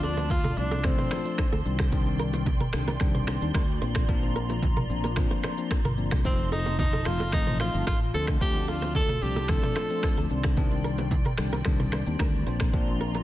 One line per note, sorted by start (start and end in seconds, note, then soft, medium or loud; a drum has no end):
0.00 0.53 D2 loud
0.00 0.26 F3 loud
0.00 0.26 A3 medium
0.00 0.26 C4 medium
0.00 0.26 D4 loud
0.00 0.29 D4 medium
0.00 1.62 F4 medium
0.00 0.11 A4 medium
0.00 1.63 D5 medium
0.00 1.61 A5 medium
0.00 12.43 C6 medium
0.00 shaker medium
0.17 0.25 C5 medium
0.17 low bongo medium
0.17 shaker medium
0.30 0.59 F4 loud
0.30 kick loud
0.30 high bongo medium
0.30 low conga medium
0.30 shaker medium
0.44 0.52 A4 medium
0.44 mid tom medium
0.44 low bongo medium
0.57 0.93 C2 loud
0.57 0.78 F3 medium
0.57 0.78 A3 medium
0.57 0.78 C4 medium
0.57 0.78 D4 medium
0.57 0.85 D4 loud
0.57 shaker soft
0.71 0.79 A4 medium
0.71 low bongo medium
0.71 shaker medium
0.84 1.22 F3 loud
0.84 1.22 A3 medium
0.84 1.22 C4 medium
0.84 1.62 C4 medium
0.84 1.22 D4 loud
0.84 finger snap medium
0.84 kick loud
0.84 cross-stick loud
0.84 low conga medium
0.84 shaker medium
0.98 1.06 C5 medium
0.98 mid tom medium
1.11 1.19 C5 medium
1.11 finger snap medium
1.11 cross-stick medium
1.11 high bongo medium
1.11 low bongo medium
1.11 shaker soft
1.25 1.45 F3 medium
1.25 1.45 A3 medium
1.25 1.46 C4 medium
1.25 1.46 D4 medium
1.25 shaker medium
1.38 finger snap medium
1.38 kick loud
1.38 cross-stick loud
1.38 high bongo medium
1.38 shaker medium
1.52 1.64 D2 loud
1.52 1.60 A4 medium
1.65 2.58 C2 loud
1.65 1.86 D#3 medium
1.65 3.80 D#3 medium
1.65 1.86 G3 medium
1.65 1.86 C4 medium
1.65 1.86 D4 medium
1.65 6.21 D5 medium
1.65 3.80 G5 medium
1.65 shaker medium
1.79 1.87 G4 medium
1.79 finger snap medium
1.79 kick loud
1.79 cross-stick loud
1.79 shaker medium
1.92 2.42 D#3 loud
1.92 2.42 G3 medium
1.92 2.43 C4 medium
1.92 2.43 D4 loud
1.92 kick loud
1.92 low conga medium
1.92 shaker medium
2.07 high bongo medium
2.19 2.27 A#4 medium
2.19 shaker medium
2.33 2.41 C5 medium
2.33 low bongo medium
2.33 shaker medium
2.46 kick loud
2.46 high bongo medium
2.46 low conga medium
2.46 shaker medium
2.60 2.68 A#4 medium
2.60 mid tom medium
2.60 low bongo medium
2.73 2.97 C2 loud
2.73 2.94 D#3 medium
2.73 2.94 G3 medium
2.73 2.94 C4 medium
2.73 2.94 D4 medium
2.73 finger snap medium
2.73 cross-stick loud
2.73 shaker medium
2.87 2.95 A#4 medium
2.87 low bongo medium
2.87 shaker medium
3.00 3.36 C2 loud
3.00 3.38 D#3 loud
3.00 3.38 G3 medium
3.00 3.38 C4 medium
3.00 3.38 D4 loud
3.00 finger snap medium
3.00 kick loud
3.00 cross-stick medium
3.00 low conga medium
3.00 shaker medium
3.15 3.22 C5 medium
3.15 mid tom medium
3.27 3.35 C5 medium
3.27 finger snap medium
3.27 cross-stick medium
3.27 high bongo medium
3.27 low bongo medium
3.27 shaker soft
3.41 3.53 D#2 loud
3.41 3.62 D#3 medium
3.41 3.62 G3 medium
3.41 3.62 C4 medium
3.41 3.62 D4 medium
3.41 shaker medium
3.54 3.78 D2 loud
3.54 3.62 A#4 medium
3.54 finger snap medium
3.54 kick loud
3.54 cross-stick loud
3.54 high bongo medium
3.54 shaker medium
3.81 4.05 A#1 loud
3.81 4.02 F3 medium
3.81 4.02 A#3 medium
3.81 4.02 C4 medium
3.81 4.02 D4 medium
3.81 6.23 F4 medium
3.81 3.90 C5 medium
3.81 6.23 A#5 medium
3.81 shaker medium
3.95 finger snap medium
3.95 kick loud
3.95 cross-stick loud
3.95 shaker medium
4.08 4.86 A#1 loud
4.08 4.58 F3 loud
4.08 4.59 A#3 medium
4.08 4.59 C4 medium
4.08 4.59 D4 loud
4.08 kick loud
4.08 low conga medium
4.08 shaker medium
4.23 high bongo medium
4.35 4.44 A#4 medium
4.35 shaker medium
4.49 4.57 C5 medium
4.49 low bongo medium
4.49 shaker medium
4.62 kick loud
4.62 high bongo medium
4.62 low conga medium
4.62 shaker medium
4.77 4.84 A#4 medium
4.77 mid tom medium
4.89 5.25 A#1 loud
4.89 5.10 F3 medium
4.89 5.10 A#3 medium
4.89 5.10 C4 medium
4.89 5.10 D4 medium
4.89 shaker soft
5.04 5.11 A#4 medium
5.04 low bongo medium
5.04 shaker medium
5.16 5.54 F3 medium
5.16 5.54 A#3 medium
5.16 5.55 C4 medium
5.16 5.55 D4 loud
5.16 finger snap medium
5.16 kick loud
5.16 cross-stick medium
5.16 low conga medium
5.16 shaker medium
5.31 5.38 C5 medium
5.43 5.52 C5 medium
5.43 finger snap medium
5.43 cross-stick medium
5.43 high bongo medium
5.43 low bongo medium
5.43 shaker soft
5.58 5.78 F3 medium
5.58 5.78 A#3 medium
5.58 5.78 C4 medium
5.58 5.78 D4 medium
5.58 shaker medium
5.71 finger snap medium
5.71 kick loud
5.71 cross-stick loud
5.71 high bongo medium
5.71 shaker medium
5.85 6.08 G1 medium
5.85 5.92 A#4 medium
5.85 mid tom medium
5.98 6.18 F3 medium
5.98 6.18 A#3 medium
5.98 6.19 C4 medium
5.98 6.19 D4 medium
5.98 shaker medium
6.11 6.23 C2 medium
6.11 6.19 G4 medium
6.11 finger snap medium
6.11 kick medium
6.11 cross-stick loud
6.11 shaker medium
6.24 7.02 F1 loud
6.24 6.75 F3 loud
6.24 6.75 A3 medium
6.24 6.75 C4 medium
6.24 6.50 C4 medium
6.24 6.75 D#4 loud
6.24 10.26 F4 medium
6.24 8.12 D#5 medium
6.24 8.12 A5 medium
6.24 kick loud
6.24 low conga medium
6.24 shaker medium
6.39 high bongo soft
6.52 6.77 D#4 medium
6.52 6.60 A4 medium
6.52 shaker medium
6.66 6.73 C5 medium
6.66 low bongo medium
6.66 shaker medium
6.79 7.08 D#4 loud
6.79 kick loud
6.79 high bongo medium
6.79 low conga medium
6.79 shaker medium
6.93 7.00 A4 medium
6.93 mid tom medium
6.93 low bongo medium
7.05 7.33 F1 medium
7.05 7.26 F3 medium
7.05 7.27 A3 medium
7.05 7.27 C4 medium
7.05 7.27 D#4 medium
7.05 7.33 F4 loud
7.05 finger snap medium
7.05 cross-stick loud
7.05 shaker medium
7.20 7.27 A4 medium
7.20 low bongo medium
7.20 shaker medium
7.32 7.68 A1 loud
7.32 7.71 F3 medium
7.32 7.71 A3 medium
7.32 7.71 C4 medium
7.32 7.71 D#4 loud
7.32 7.58 D#4 loud
7.32 finger snap medium
7.32 kick loud
7.32 cross-stick loud
7.32 low conga medium
7.32 shaker medium
7.47 7.54 C5 medium
7.47 mid tom medium
7.60 7.85 F4 medium
7.60 7.68 C5 medium
7.60 finger snap medium
7.60 cross-stick medium
7.60 high bongo medium
7.60 low bongo medium
7.60 shaker soft
7.74 7.85 G1 loud
7.74 7.94 F3 medium
7.74 7.94 A3 medium
7.74 7.94 C4 medium
7.74 7.94 D#4 medium
7.74 shaker medium
7.87 8.00 F4 loud
7.87 7.95 A4 medium
7.87 finger snap medium
7.87 kick loud
7.87 cross-stick loud
7.87 high bongo medium
7.87 shaker medium
8.14 8.37 D2 loud
8.14 8.35 F3 medium
8.14 8.35 A3 medium
8.14 8.35 C4 medium
8.14 8.35 D4 medium
8.14 8.27 A4 loud
8.14 8.22 C5 medium
8.14 10.28 D5 medium
8.14 10.28 A5 medium
8.14 shaker medium
8.27 finger snap medium
8.27 kick loud
8.27 cross-stick loud
8.27 shaker medium
8.41 9.18 D2 loud
8.41 8.91 F3 loud
8.41 8.91 A3 medium
8.41 8.91 C4 medium
8.41 8.91 D4 loud
8.41 8.70 G4 loud
8.41 kick loud
8.41 low conga medium
8.41 shaker medium
8.55 high bongo medium
8.68 8.95 F4 loud
8.68 8.76 A4 medium
8.68 shaker medium
8.82 8.90 C5 medium
8.82 low bongo medium
8.82 shaker medium
8.95 9.24 A4 loud
8.95 kick loud
8.95 high bongo medium
8.95 low conga medium
8.95 shaker medium
9.09 9.16 A4 medium
9.09 mid tom medium
9.09 low bongo medium
9.22 9.57 C2 medium
9.22 9.43 F3 medium
9.22 9.43 A3 medium
9.22 9.43 C4 medium
9.22 9.43 D4 medium
9.22 9.51 G4 loud
9.22 shaker soft
9.36 9.43 A4 medium
9.36 low bongo medium
9.36 shaker medium
9.48 9.87 F3 loud
9.48 9.87 A3 medium
9.48 9.87 C4 medium
9.48 9.87 D4 loud
9.48 10.31 A4 loud
9.48 finger snap medium
9.48 kick loud
9.48 cross-stick loud
9.48 low conga medium
9.48 shaker medium
9.63 9.71 C5 medium
9.63 mid tom medium
9.76 9.84 C5 medium
9.76 finger snap medium
9.76 cross-stick loud
9.76 high bongo medium
9.76 low bongo medium
9.76 shaker medium
9.90 10.27 F3 medium
9.90 10.27 A3 medium
9.90 10.27 C4 medium
9.90 10.27 D4 medium
9.90 shaker medium
10.03 finger snap medium
10.03 kick loud
10.03 cross-stick loud
10.03 high bongo medium
10.03 shaker medium
10.17 10.28 D2 loud
10.17 10.25 A4 medium
10.30 11.23 C2 loud
10.30 10.55 D#3 medium
10.30 12.44 D#3 medium
10.30 10.55 G3 medium
10.30 10.55 C4 medium
10.30 10.56 D4 medium
10.30 13.23 D5 medium
10.30 12.44 G5 medium
10.30 shaker medium
10.44 10.52 G4 medium
10.44 finger snap medium
10.44 kick loud
10.44 cross-stick loud
10.44 shaker medium
10.57 11.07 D#3 loud
10.57 11.07 G3 medium
10.57 11.07 C4 medium
10.57 11.07 D4 loud
10.57 kick loud
10.57 low conga medium
10.57 shaker medium
10.72 high bongo medium
10.84 10.92 A#4 medium
10.84 shaker medium
10.98 11.06 C5 medium
10.98 low bongo medium
10.98 shaker medium
11.11 kick loud
11.11 high bongo medium
11.11 low conga medium
11.11 shaker medium
11.25 11.33 A#4 medium
11.25 mid tom medium
11.25 low bongo medium
11.38 11.62 C2 loud
11.38 11.59 D#3 medium
11.38 11.59 G3 medium
11.38 11.59 C4 medium
11.38 11.59 D4 medium
11.38 finger snap medium
11.38 cross-stick loud
11.38 shaker medium
11.52 11.60 A#4 medium
11.52 low bongo medium
11.52 shaker medium
11.65 12.01 C2 medium
11.65 12.03 D#3 loud
11.65 12.03 G3 medium
11.65 12.03 C4 medium
11.65 12.03 D4 loud
11.65 finger snap medium
11.65 kick loud
11.65 cross-stick loud
11.65 low conga medium
11.65 shaker medium
11.80 11.87 C5 medium
11.80 mid tom medium
11.92 12.01 C5 medium
11.92 finger snap medium
11.92 cross-stick loud
11.92 high bongo medium
11.92 low bongo medium
11.92 shaker soft
12.06 12.18 D#2 medium
12.06 12.43 D#3 medium
12.06 12.43 G3 medium
12.06 12.44 C4 medium
12.06 12.44 D4 medium
12.06 shaker medium
12.19 12.43 D2 loud
12.19 12.28 A#4 medium
12.19 finger snap medium
12.19 kick loud
12.19 cross-stick loud
12.19 high bongo medium
12.19 shaker medium
12.46 12.70 A#1 loud
12.46 12.71 F3 medium
12.46 12.72 A#3 medium
12.46 12.72 C4 medium
12.46 12.72 D4 medium
12.46 13.23 F4 medium
12.46 12.55 C5 medium
12.46 13.23 A#5 medium
12.46 13.23 C6 medium
12.46 shaker medium
12.60 finger snap medium
12.60 kick loud
12.60 cross-stick loud
12.60 shaker medium
12.73 13.23 A#1 loud
12.73 13.23 F3 loud
12.73 13.23 A#3 medium
12.73 13.23 C4 medium
12.73 13.23 D4 loud
12.73 kick loud
12.73 low conga medium
12.73 shaker medium
12.88 high bongo medium
13.00 13.09 A#4 medium
13.00 shaker medium
13.14 13.22 A#4 medium
13.14 low bongo medium
13.14 shaker medium